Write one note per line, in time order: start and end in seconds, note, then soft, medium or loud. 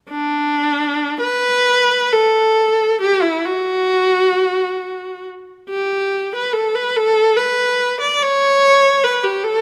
0.10 1.16 D4 medium
1.21 2.11 B4 medium
2.12 3.00 A4 medium
3.01 3.22 G4 medium
3.22 3.43 E4 medium
3.45 5.26 F#4 medium
5.70 6.31 G4 medium
6.36 6.56 B4 medium
6.53 6.75 A4 medium
6.75 6.95 B4 medium
6.97 7.37 A4 medium
7.37 7.99 B4 medium
8.01 8.20 D5 medium
8.23 9.03 C#5 medium
9.04 9.23 B4 medium
9.23 9.42 G4 medium
9.44 9.61 A4 medium